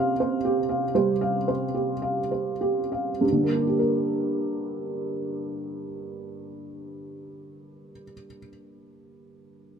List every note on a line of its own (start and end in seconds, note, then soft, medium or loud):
0.00 0.91 C3 medium
0.00 0.11 G4 soft
0.00 0.20 C5 soft
0.00 0.69 F5 medium
0.20 0.59 C5 soft
0.45 0.84 G4 soft
0.69 1.10 F5 soft
0.95 1.50 G3 soft
0.95 1.36 C5 soft
1.21 1.63 F5 soft
1.48 1.91 C5 soft
1.74 2.20 G4 soft
2.02 2.50 F5 soft
2.31 2.80 C5 soft
2.61 3.10 G4 soft
2.92 3.21 F5 soft
3.21 7.91 G2 soft
3.32 8.02 D3 soft
3.44 8.13 A#3 soft
3.56 8.26 D4 soft
3.67 8.37 G4 soft
3.79 8.49 A#4 soft